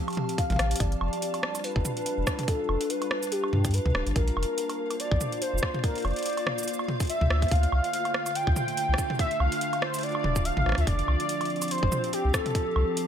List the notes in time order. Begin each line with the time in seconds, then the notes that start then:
Already playing: F3 C4 G4 F5 A5
0.08 closed hi-hat, high woodblock
0.10 closed hi-hat
0.13 closed hi-hat
0.15 closed hi-hat, mid tom
0.29 closed hi-hat
0.38 F5, kick, closed hi-hat
0.50 A1, closed hi-hat, mid tom
0.52 mid tom
0.56 cross-stick, closed hi-hat, mid tom
0.59 A1, mid tom
0.63 mid tom
0.66 mid tom
0.71 closed hi-hat
0.76 closed hi-hat
0.80 G1 G3 F4 D5, kick, closed hi-hat
0.92 closed hi-hat
1.01 F1, high woodblock
1.12 D4, closed hi-hat
1.22 closed hi-hat
1.34 closed hi-hat, high woodblock
1.43 cross-stick
1.55 closed hi-hat, high woodblock, shaker
1.64 B4, closed hi-hat
1.76 G1, kick
1.85 mid tom, shaker
1.97 closed hi-hat
2.06 closed hi-hat
2.18 F1
2.27 kick, cross-stick, shaker
2.32 B4
2.39 closed hi-hat, mid tom
2.48 A4, kick, closed hi-hat
2.69 F1, high woodblock
2.81 closed hi-hat
2.90 B4, closed hi-hat
3.02 closed hi-hat, high woodblock
3.11 cross-stick
3.23 closed hi-hat, shaker
3.32 G4, closed hi-hat
3.44 high woodblock
3.53 G2, mid tom
3.65 kick, closed hi-hat, shaker
3.71 B4, closed hi-hat
3.74 closed hi-hat
3.78 closed hi-hat
3.86 D2, mid tom
3.95 D1, cross-stick
4.07 G1, closed hi-hat
4.16 A#1 A#3 A#4, kick, closed hi-hat
4.28 closed hi-hat
4.37 F1, high woodblock
4.43 closed hi-hat
4.52 C5
4.58 closed hi-hat
4.64 F4
4.70 closed hi-hat, high woodblock
4.85 D5
4.91 closed hi-hat, high woodblock
5.00 D5, closed hi-hat
5.11 A#1, kick
5.21 mid tom, shaker
5.32 closed hi-hat
5.42 C5, closed hi-hat
5.54 F1
5.58 shaker
5.63 kick, cross-stick
5.74 mid tom
5.84 A#4, kick, closed hi-hat
5.95 closed hi-hat
5.98 closed hi-hat
6.00 closed hi-hat
6.02 F1 D5, closed hi-hat
6.05 closed hi-hat, high woodblock
6.08 closed hi-hat
6.11 closed hi-hat
6.13 closed hi-hat
6.16 closed hi-hat
6.19 closed hi-hat
6.23 closed hi-hat
6.26 closed hi-hat
6.30 closed hi-hat
6.33 closed hi-hat
6.37 closed hi-hat, high woodblock
6.47 cross-stick, mid tom
6.58 closed hi-hat, shaker
6.63 shaker
6.68 closed hi-hat, shaker
6.73 shaker
6.79 high woodblock
6.88 mid tom
7.00 kick, closed hi-hat, shaker
7.03 closed hi-hat
7.05 closed hi-hat
7.07 E5, closed hi-hat
7.10 closed hi-hat
7.21 D2, mid tom
7.30 D2, cross-stick
7.42 kick, closed hi-hat
7.48 closed hi-hat
7.51 D2 D3 F5, kick, closed hi-hat
7.55 closed hi-hat
7.63 closed hi-hat
7.68 A3
7.72 C2, high woodblock
7.84 closed hi-hat
7.93 closed hi-hat
8.05 closed hi-hat, high woodblock
8.14 cross-stick
8.26 closed hi-hat, high woodblock, shaker
8.35 G5, closed hi-hat
8.47 D2, kick
8.52 D4
8.56 mid tom, shaker
8.68 closed hi-hat
8.77 closed hi-hat
8.89 C2
8.94 cross-stick
8.98 kick, shaker
9.10 mid tom
9.19 E5, kick, closed hi-hat
9.31 closed hi-hat
9.40 C2 F5, high woodblock
9.52 closed hi-hat
9.61 closed hi-hat
9.73 closed hi-hat, high woodblock
9.82 C5, cross-stick
9.94 closed hi-hat, shaker
9.96 closed hi-hat
9.99 closed hi-hat
10.01 D5, closed hi-hat
10.03 closed hi-hat
10.06 closed hi-hat
10.12 closed hi-hat, high woodblock
10.24 D1, mid tom
10.36 kick, shaker
10.45 F5, closed hi-hat
10.57 A1, mid tom
10.66 A1, cross-stick
10.69 cross-stick
10.72 cross-stick
10.75 D2, cross-stick, closed hi-hat
10.80 E5
10.87 F1 F3 D5, kick, closed hi-hat
10.99 C4, closed hi-hat
11.08 C2, high woodblock
11.20 closed hi-hat
11.29 closed hi-hat
11.41 closed hi-hat, high woodblock
11.45 closed hi-hat
11.50 closed hi-hat
11.54 G4, closed hi-hat
11.62 closed hi-hat, high woodblock, shaker
11.64 closed hi-hat
11.68 C5, closed hi-hat
11.71 closed hi-hat
11.78 closed hi-hat
11.83 F1, kick
11.92 mid tom, shaker
12.04 closed hi-hat
12.13 G4, closed hi-hat
12.18 A5
12.25 C2
12.34 A4, kick, cross-stick, shaker
12.46 closed hi-hat, mid tom
12.55 kick, closed hi-hat
12.76 C2, high woodblock
12.97 closed hi-hat